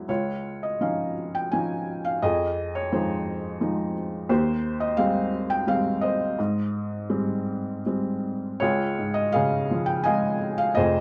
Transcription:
0.00 0.11 F#3 soft
0.00 0.11 G#3 soft
0.00 0.11 E4 soft
0.00 0.11 G#4 soft
0.00 0.10 E5 medium
0.08 2.18 C#2 soft
0.08 1.13 F4 soft
0.08 0.65 C#5 medium
0.63 0.82 D#5 medium
0.81 1.50 F3 soft
0.81 1.50 C#4 soft
0.81 1.50 D#4 soft
0.81 1.31 F5 medium
1.35 1.51 G5 medium
1.52 2.21 F3 soft
1.52 2.21 C#4 soft
1.52 2.21 D#4 soft
1.52 2.06 G#5 medium
2.05 2.23 F5 medium
2.22 4.25 F2 medium
2.22 2.92 G#4 medium
2.22 2.76 D#5 medium
2.75 2.93 C#5 medium
2.92 3.59 F3 soft
2.92 3.60 G#3 soft
2.92 3.60 D#4 soft
2.92 3.92 G#4 soft
2.92 3.91 C5 medium
3.61 4.27 F3 soft
3.61 4.27 G#3 soft
3.61 4.28 D#4 soft
4.29 6.34 D#2 medium
4.29 5.30 G4 medium
4.29 4.83 C5 medium
4.80 4.99 D#5 medium
4.97 5.66 G3 soft
4.97 5.66 G#3 soft
4.97 5.66 C4 soft
4.97 5.52 F5 medium
5.50 5.68 G5 medium
5.67 6.35 G3 soft
5.67 6.36 G#3 soft
5.67 6.36 C4 soft
5.67 6.04 F5 medium
6.01 7.81 C5 soft
6.01 7.80 D#5 medium
6.39 8.58 G#2 medium
7.10 7.83 G3 soft
7.10 7.83 G#3 soft
7.10 7.83 C4 soft
7.86 8.60 G3 soft
7.86 8.60 G#3 soft
7.86 8.60 C4 soft
8.60 10.73 C#2 medium
8.60 9.67 F4 medium
8.60 9.32 G#4 medium
8.60 9.17 C#5 medium
8.99 10.38 G#2 soft
9.14 9.32 D#5 medium
9.32 10.73 C#3 medium
9.32 10.38 G#4 medium
9.32 9.89 F5 medium
9.71 10.74 F3 soft
9.86 10.06 G5 medium
10.04 10.75 G#3 medium
10.04 10.72 D#5 medium
10.04 10.56 F5 medium
10.04 10.60 G#5 medium
10.58 10.77 F5 medium
10.75 11.00 F1 medium
10.75 11.00 F2 medium
10.75 11.00 G#4 medium
10.75 11.00 C5 medium
10.75 11.00 D#5 medium

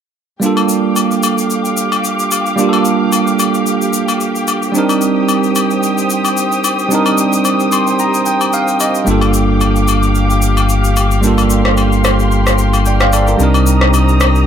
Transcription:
0.40 2.53 G3 medium
0.40 2.54 A#3 medium
0.40 2.55 D4 medium
0.40 9.03 G4 medium
0.40 4.71 F5 medium
0.40 13.35 G5 medium
0.40 4.71 D6 medium
0.40 shaker medium
0.44 2.55 F4 medium
0.44 2.56 A4 medium
0.57 high agogo medium
0.57 shaker soft
0.69 shaker medium
0.96 high agogo medium
0.96 shaker medium
1.11 shaker soft
1.23 high agogo medium
1.23 shaker medium
1.38 shaker medium
1.50 shaker medium
1.65 shaker medium
1.77 shaker medium
1.92 high agogo medium
1.92 shaker medium
2.04 shaker medium
2.19 shaker soft
2.31 high agogo medium
2.31 shaker medium
2.46 shaker soft
2.56 4.69 G3 medium
2.56 4.70 A#3 medium
2.56 4.71 D4 medium
2.56 shaker medium
2.61 4.72 F4 medium
2.61 2.67 G4 medium
2.69 4.76 A4 medium
2.73 high agogo medium
2.73 shaker soft
2.85 shaker medium
3.12 high agogo medium
3.12 shaker medium
3.27 shaker soft
3.39 high agogo medium
3.39 shaker medium
3.54 shaker medium
3.66 shaker medium
3.81 shaker medium
3.93 shaker medium
4.08 high agogo medium
4.08 shaker medium
4.21 shaker medium
4.35 shaker medium
4.48 high agogo medium
4.48 shaker medium
4.62 shaker medium
4.72 6.85 G3 medium
4.72 6.86 C4 medium
4.72 6.87 D4 medium
4.72 9.03 C5 medium
4.72 9.03 D#6 medium
4.72 shaker medium
4.77 6.88 D#4 medium
4.77 6.89 A#4 medium
4.89 high agogo medium
4.89 shaker soft
5.01 shaker medium
5.29 high agogo medium
5.29 shaker medium
5.44 shaker soft
5.55 high agogo medium
5.55 shaker medium
5.71 shaker medium
5.83 shaker medium
5.98 shaker medium
6.10 shaker medium
6.25 high agogo medium
6.25 shaker medium
6.37 shaker medium
6.52 shaker soft
6.64 high agogo medium
6.64 shaker medium
6.79 shaker medium
6.88 9.02 G3 medium
6.88 9.03 C4 medium
6.88 9.03 D4 medium
6.88 shaker medium
6.93 9.04 D#4 medium
6.93 9.05 A#4 medium
7.06 high agogo medium
7.06 shaker soft
7.18 shaker medium
7.33 shaker medium
7.45 high agogo medium
7.45 shaker medium
7.60 shaker soft
7.72 7.97 C6 medium
7.72 high agogo medium
7.72 shaker loud
7.87 shaker medium
7.99 8.24 A#5 medium
7.99 shaker medium
8.14 shaker medium
8.26 8.51 G5 medium
8.26 shaker medium
8.41 high agogo medium
8.41 shaker medium
8.53 8.78 F5 medium
8.53 shaker medium
8.68 shaker medium
8.80 9.05 D#5 medium
8.80 high agogo medium
8.80 shaker medium
8.95 shaker medium
9.04 13.35 G1 medium
9.04 11.18 G3 medium
9.04 11.19 A#3 medium
9.04 11.20 D4 medium
9.04 14.47 G4 medium
9.04 13.35 F5 medium
9.04 11.21 D6 medium
9.04 shaker medium
9.09 11.20 F4 medium
9.09 11.21 A4 medium
9.21 high agogo medium
9.21 shaker soft
9.34 shaker medium
9.61 high agogo medium
9.61 shaker medium
9.76 shaker soft
9.88 high agogo medium
9.88 shaker medium
10.03 shaker medium
10.15 shaker medium
10.30 shaker medium
10.42 shaker medium
10.57 high agogo medium
10.57 shaker medium
10.69 shaker medium
10.84 shaker medium
10.96 high agogo medium
10.96 shaker medium
11.11 shaker medium
11.21 13.34 G3 medium
11.21 13.35 A#3 medium
11.21 13.36 D4 medium
11.21 13.37 C6 medium
11.21 shaker medium
11.26 12.83 F4 medium
11.26 12.84 A4 medium
11.38 high agogo medium
11.38 shaker soft
11.50 shaker medium
11.65 cross-stick medium
11.77 high agogo medium
11.77 shaker medium
11.92 shaker soft
12.04 cross-stick medium
12.04 high agogo medium
12.04 shaker medium
12.19 shaker soft
12.32 shaker medium
12.47 cross-stick medium
12.47 shaker medium
12.58 shaker medium
12.73 high agogo medium
12.73 shaker medium
12.86 13.00 D5 medium
12.86 13.00 G5 medium
12.86 shaker medium
13.00 13.13 C5 medium
13.00 13.12 F5 medium
13.00 cross-stick medium
13.00 shaker medium
13.13 13.27 A4 medium
13.13 13.27 D5 medium
13.13 high agogo medium
13.13 shaker medium
13.28 13.54 F4 medium
13.28 13.42 A#4 medium
13.28 shaker medium
13.37 14.47 C2 medium
13.37 14.47 G3 medium
13.37 14.47 C4 medium
13.37 14.47 D4 medium
13.37 14.47 C5 medium
13.37 14.47 A#5 medium
13.37 14.47 D#6 medium
13.37 shaker medium
13.42 14.47 D#4 medium
13.42 14.47 A#4 medium
13.54 high agogo medium
13.54 shaker soft
13.66 shaker medium
13.81 cross-stick medium
13.94 high agogo medium
13.94 shaker medium
14.09 shaker soft
14.20 cross-stick medium
14.20 high agogo medium
14.20 shaker loud
14.35 shaker soft

